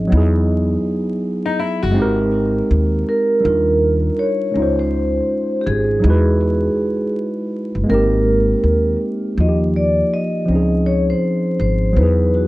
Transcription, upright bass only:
0.00 0.14 G#1 medium
0.12 0.75 E2 loud
1.83 1.97 F#1 medium
1.97 2.60 G#1 loud
2.71 3.02 D#2 medium
3.45 4.08 D#2 loud
4.56 5.19 C#2 medium
5.67 6.05 G#1 loud
6.04 6.67 E2 loud
7.75 7.87 F#1 medium
7.90 8.53 G#1 medium
8.64 8.95 D#2 medium
9.38 10.01 D#2 medium
10.48 11.12 C#2 medium
11.60 11.98 G#1 medium
11.96 12.47 E2 loud

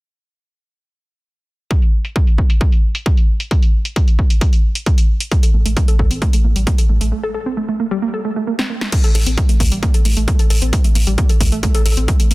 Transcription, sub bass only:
5.54 5.65 A1 loud
5.66 5.76 A1 medium
5.99 6.10 A1 loud
6.11 6.22 A1 medium
6.44 6.55 A1 loud
6.56 6.67 A1 medium
6.89 7.00 A1 loud
7.01 7.12 A1 medium
9.15 9.26 A1 loud
9.26 9.37 A1 medium
9.60 9.71 A1 loud
9.72 9.82 A1 medium
10.05 10.16 A1 loud
10.17 10.28 A1 medium
10.50 10.61 A1 loud
10.62 10.73 A1 medium
10.95 11.06 A1 loud
11.07 11.18 A1 medium
11.40 11.51 A1 loud
11.52 11.63 A1 medium
11.86 11.96 A1 medium
11.97 12.08 A1 medium
12.31 12.34 A1 loud

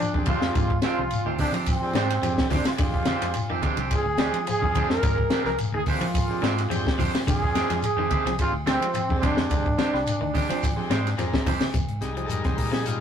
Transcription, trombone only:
0.00 0.28 D4 loud
0.29 0.80 F4 loud
0.83 1.35 F4 loud
1.40 1.52 D4 medium
1.68 2.48 C4 loud
2.52 2.65 D4 medium
2.67 2.72 F4 medium
2.79 3.60 F4 loud
3.96 4.45 G#4 loud
4.50 4.89 G#4 loud
4.90 5.42 A#4 loud
5.46 5.59 A#4 loud
5.74 5.80 G#4 loud
5.88 6.95 F4 loud
7.28 7.80 G#4 loud
7.85 8.36 G#4 loud
8.41 8.53 F4 loud
8.70 9.28 C4 loud
9.26 11.20 D4 medium

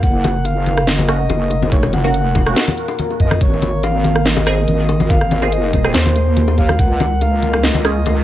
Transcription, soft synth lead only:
0.03 0.47 F#5 loud
0.45 0.89 F5 loud
0.88 1.72 D#5 loud
1.72 1.92 C#5 loud
1.93 2.74 F#5 loud
3.20 3.40 D#5 medium
3.41 3.85 C#5 loud
3.83 4.27 F5 loud
4.26 5.10 D#5 loud
5.10 5.54 F5 loud
5.53 5.96 D#5 loud
5.95 6.57 C5 loud
6.58 6.81 F5 loud
6.79 7.23 F#5 loud
7.22 7.63 F5 loud
7.64 8.24 D#5 loud

